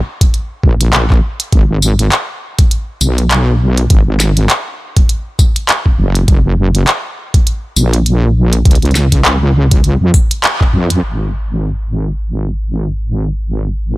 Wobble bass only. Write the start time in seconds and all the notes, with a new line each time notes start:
0.63 A#1
1.53 G#1
3.01 B1
3.90 G#1
5.98 F#1
6.28 F#1
7.76 A#1
8.66 C#2
9.25 C#2
9.84 C#2
10.01 F2
10.73 F2
11.03 G#1